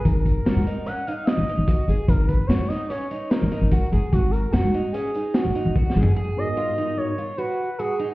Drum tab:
HH |x--x--x--x--x--x--x--x--x--x--|x--x--x--x--x--x--x--x--x--x--|x--x--x--x--x--x--x--x--------|------------------------------|
SD |------o-----------o-----------|------o--o--------o--o--------|------o-----------o-------o---|------------------------------|
FT |------------------------------|------------------------------|----------------------------o-|------------------------------|
BD |o--o--------------------o-----|o--o--------------------o-----|o-----------------------o-----|------------------------------|